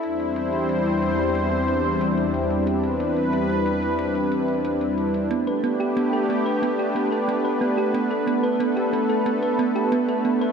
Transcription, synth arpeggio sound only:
0, 0, Header, 1, 2, 480
1, 0, Start_track
1, 0, Tempo, 659341
1, 24, Time_signature, 4, 2, 24, 8
1, 7660, End_track
2, 0, Start_track
2, 0, Title_t, "Synth arpeggio sound"
2, 0, Program_c, 0, 84
2, 3862, Note_on_c, 0, 59, 77
2, 3943, Note_off_c, 0, 59, 0
2, 3983, Note_on_c, 0, 71, 76
2, 4063, Note_off_c, 0, 71, 0
2, 4103, Note_on_c, 0, 59, 99
2, 4151, Note_off_c, 0, 59, 0
2, 4222, Note_on_c, 0, 67, 94
2, 4337, Note_off_c, 0, 67, 0
2, 4342, Note_on_c, 0, 59, 85
2, 4423, Note_off_c, 0, 59, 0
2, 4461, Note_on_c, 0, 69, 77
2, 4542, Note_off_c, 0, 69, 0
2, 4581, Note_on_c, 0, 59, 73
2, 4662, Note_off_c, 0, 59, 0
2, 4701, Note_on_c, 0, 71, 101
2, 4817, Note_off_c, 0, 71, 0
2, 4821, Note_on_c, 0, 59, 98
2, 4870, Note_off_c, 0, 59, 0
2, 4941, Note_on_c, 0, 67, 72
2, 5057, Note_off_c, 0, 67, 0
2, 5061, Note_on_c, 0, 59, 77
2, 5176, Note_off_c, 0, 59, 0
2, 5180, Note_on_c, 0, 69, 75
2, 5230, Note_off_c, 0, 69, 0
2, 5300, Note_on_c, 0, 59, 79
2, 5382, Note_off_c, 0, 59, 0
2, 5420, Note_on_c, 0, 71, 76
2, 5502, Note_off_c, 0, 71, 0
2, 5540, Note_on_c, 0, 59, 104
2, 5590, Note_off_c, 0, 59, 0
2, 5660, Note_on_c, 0, 67, 100
2, 5776, Note_off_c, 0, 67, 0
2, 5781, Note_on_c, 0, 59, 79
2, 5862, Note_off_c, 0, 59, 0
2, 5900, Note_on_c, 0, 69, 76
2, 5982, Note_off_c, 0, 69, 0
2, 6020, Note_on_c, 0, 59, 76
2, 6102, Note_off_c, 0, 59, 0
2, 6140, Note_on_c, 0, 71, 97
2, 6256, Note_off_c, 0, 71, 0
2, 6261, Note_on_c, 0, 59, 103
2, 6310, Note_off_c, 0, 59, 0
2, 6380, Note_on_c, 0, 67, 79
2, 6496, Note_off_c, 0, 67, 0
2, 6500, Note_on_c, 0, 59, 74
2, 6616, Note_off_c, 0, 59, 0
2, 6621, Note_on_c, 0, 69, 76
2, 6670, Note_off_c, 0, 69, 0
2, 6741, Note_on_c, 0, 59, 83
2, 6822, Note_off_c, 0, 59, 0
2, 6862, Note_on_c, 0, 71, 73
2, 6943, Note_off_c, 0, 71, 0
2, 6981, Note_on_c, 0, 59, 101
2, 7030, Note_off_c, 0, 59, 0
2, 7102, Note_on_c, 0, 67, 100
2, 7217, Note_off_c, 0, 67, 0
2, 7221, Note_on_c, 0, 59, 81
2, 7302, Note_off_c, 0, 59, 0
2, 7342, Note_on_c, 0, 69, 73
2, 7423, Note_off_c, 0, 69, 0
2, 7461, Note_on_c, 0, 59, 76
2, 7542, Note_off_c, 0, 59, 0
2, 7581, Note_on_c, 0, 71, 100
2, 7660, Note_off_c, 0, 71, 0
2, 7660, End_track
0, 0, End_of_file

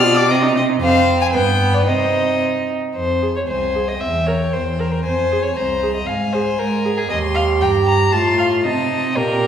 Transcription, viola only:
0, 0, Header, 1, 2, 480
1, 0, Start_track
1, 0, Key_signature, -4, "minor"
1, 0, Tempo, 530035
1, 738, Time_signature, 2, 2, 24, 8
1, 3629, Tempo, 515907
1, 8714, End_track
2, 0, Start_track
2, 0, Title_t, "Viola"
2, 0, Program_c, 0, 41
2, 27, Note_on_c, 0, 65, 51
2, 145, Note_on_c, 0, 67, 53
2, 158, Note_off_c, 0, 65, 0
2, 256, Note_off_c, 0, 67, 0
2, 261, Note_on_c, 0, 60, 56
2, 384, Note_on_c, 0, 63, 50
2, 397, Note_off_c, 0, 60, 0
2, 505, Note_on_c, 0, 60, 48
2, 518, Note_off_c, 0, 63, 0
2, 625, Note_on_c, 0, 63, 51
2, 638, Note_off_c, 0, 60, 0
2, 741, Note_off_c, 0, 63, 0
2, 747, Note_on_c, 0, 60, 58
2, 1220, Note_on_c, 0, 59, 54
2, 1234, Note_off_c, 0, 60, 0
2, 1700, Note_off_c, 0, 59, 0
2, 1706, Note_on_c, 0, 63, 47
2, 2479, Note_off_c, 0, 63, 0
2, 2918, Note_on_c, 0, 68, 28
2, 2990, Note_off_c, 0, 68, 0
2, 3397, Note_on_c, 0, 68, 25
2, 3469, Note_off_c, 0, 68, 0
2, 3877, Note_on_c, 0, 70, 29
2, 3951, Note_off_c, 0, 70, 0
2, 4359, Note_on_c, 0, 70, 28
2, 4434, Note_off_c, 0, 70, 0
2, 4842, Note_on_c, 0, 68, 35
2, 4917, Note_off_c, 0, 68, 0
2, 5320, Note_on_c, 0, 68, 32
2, 5395, Note_off_c, 0, 68, 0
2, 5800, Note_on_c, 0, 68, 36
2, 5874, Note_off_c, 0, 68, 0
2, 6272, Note_on_c, 0, 68, 34
2, 6346, Note_off_c, 0, 68, 0
2, 6509, Note_on_c, 0, 67, 44
2, 7463, Note_on_c, 0, 65, 47
2, 7477, Note_off_c, 0, 67, 0
2, 7945, Note_on_c, 0, 63, 47
2, 7959, Note_off_c, 0, 65, 0
2, 8428, Note_on_c, 0, 67, 49
2, 8442, Note_off_c, 0, 63, 0
2, 8714, Note_off_c, 0, 67, 0
2, 8714, End_track
0, 0, End_of_file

